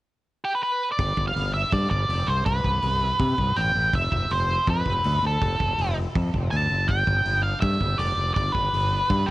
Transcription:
0.45 G4
0.55 B4
0.63 B4
0.92 D5
0.99 G1 G2, kick, open hi-hat
1.17 G1, kick
1.28 F5
1.36 G1 B3, open hi-hat
1.54 D4 E5
1.72 G2 G3 D5, kick, open hi-hat
1.90 G1 B3 D5, kick
2.09 F1 G4, open hi-hat
2.28 C2 C3 C5
2.46 C2 C3 B4, kick, open hi-hat
2.64 C2, kick
2.82 C2 B3, open hi-hat
3.01 E4
3.19 C3 G3, kick, open hi-hat
3.38 C2 B3, kick
3.56 A1 G4 G5, open hi-hat
3.75 A1 E4
3.93 F1 F3 E5, kick, open hi-hat
4.12 F1, kick
4.31 F1 C4 C5, open hi-hat
4.50 E4
4.67 F2 F3 B4, kick, open hi-hat
4.86 F1 C4, kick
5.04 D2 A4, open hi-hat
5.23 D2 E4 A4
5.41 F1 F3, kick, open hi-hat
5.60 F1, kick
5.78 F1 C4, open hi-hat
5.97 E4
6.15 F2 F3, kick, open hi-hat
6.34 F1 C4, kick
6.51 D2 A4 A5, open hi-hat
6.70 F#1 E4
6.88 G1 G2 G5, kick, open hi-hat
7.07 G1, kick
7.26 G1 B3, open hi-hat
7.43 D4 F5
7.61 G2 G3 E5, kick, open hi-hat
7.81 G1 B3, kick
7.98 F1 G4 D5, open hi-hat
8.17 F1 D4
8.34 G1 G2 D5, kick, open hi-hat
8.52 G1 B4, kick
8.73 G1 B3, open hi-hat
8.93 D4
9.10 G2 G3, kick, open hi-hat
9.26 G4

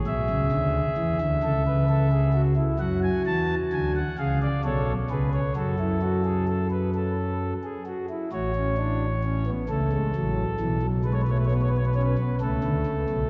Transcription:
Already playing: G#4
0.07 B1 B2 E5
0.30 C#2 C#3
0.52 D2 D3
0.97 E2 E3
1.21 D2 D3
1.43 C#2 C#3 A4
1.67 B4
1.89 A4
2.12 G#4
2.33 F#4
2.56 E4
2.79 F#2 F#3 F#4 F#5
3.03 G#5
3.26 E2 E3 A5
3.73 D2 D3 G#5
3.96 F#5
4.18 C#2 C#3 G#4 F5
4.42 D5
4.64 B1 B2 A4 C#5
5.10 C#2 C#3 G#4 B4
5.33 C#5
5.56 F#2 F#3 F#4 A4
5.79 E4
6.02 F#4
6.25 G#4
6.48 A4
6.71 B4
6.94 A4
7.64 G#4
7.86 F#4
8.10 E4
8.32 A1 A2 F#4 C#5
8.55 C#4
8.78 D4
9.24 C#4
9.46 B3
9.69 C#2 C#3 A3 A4
9.93 G#3
10.15 A1 A2 F#3
10.60 B1 B2 E3
10.82 F#3
11.05 G#3 B4
11.13 C#5
11.22 B4
11.28 A3 C#5
11.38 B4
11.45 C#5
11.51 B3 B4
11.61 C#5
11.68 B4
11.77 C#5
11.86 B4
11.94 C#4 C#5
12.02 B4
12.18 B3
12.41 C#2 C#3 A3 A4
12.64 D2 D3
12.86 C#2 C#3
13.09 B1 B2

